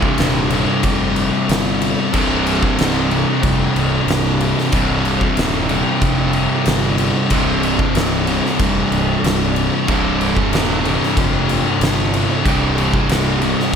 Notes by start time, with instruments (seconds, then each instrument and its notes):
Already playing: distorted electric guitar C2 G2 C3
0.02 kick
0.18 fingered electric bass D#1, snare, crash
0.50 distorted electric guitar G2 C3, crash
0.56 distorted electric guitar C2
0.83 fingered electric bass F1, distorted electric guitar C2 G2 C3, kick, crash
1.16 crash
1.49 fingered electric bass G1, snare, crash
1.82 crash
2.13 fingered electric bass C1, distorted electric guitar C2 G2, kick, crash
2.17 distorted electric guitar C3
2.46 crash
2.63 kick
2.78 fingered electric bass C1, snare, crash
3.11 distorted electric guitar G2 C3, crash
3.15 distorted electric guitar C2
3.43 fingered electric bass F1, distorted electric guitar C2 G2 C3, kick, crash
3.75 fingered electric bass C1, crash
4.07 fingered electric bass C1, snare, crash
4.41 crash
4.59 snare
4.72 fingered electric bass C1, distorted electric guitar C2 G2, kick, crash
4.77 distorted electric guitar C3
5.05 crash
5.21 kick
5.37 fingered electric bass D#1, snare, crash
5.69 distorted electric guitar G2 C3, crash
5.73 distorted electric guitar C2
6.01 fingered electric bass F1, distorted electric guitar C2 G2 C3, kick, crash
6.33 crash
6.66 fingered electric bass G1, snare, crash
6.98 crash
7.30 fingered electric bass C1, distorted electric guitar C2 G2 C3, kick, crash
7.63 crash
7.79 kick
7.94 fingered electric bass C1, snare, crash
8.27 distorted electric guitar G2 C3, crash
8.31 distorted electric guitar C2
8.46 snare
8.59 fingered electric bass F1, distorted electric guitar C2 G2 C3, kick, crash
8.91 fingered electric bass C1, crash
9.23 fingered electric bass C1, snare, crash
9.56 crash
9.88 fingered electric bass C1, distorted electric guitar C2 G2 C3, kick, crash
10.21 crash
10.37 kick
10.52 fingered electric bass D#1, snare, crash
10.83 distorted electric guitar G2 C3, crash
10.87 distorted electric guitar C2
11.03 snare
11.17 fingered electric bass F1, distorted electric guitar C2 G2 C3, kick, crash
11.49 crash
11.81 fingered electric bass G1, snare, crash
12.14 crash
12.45 fingered electric bass C1, distorted electric guitar C2 G2 C3, kick, crash
12.78 crash
12.93 kick
13.08 fingered electric bass C1, snare, crash
13.41 distorted electric guitar G2 C3, crash
13.46 distorted electric guitar C2
13.60 snare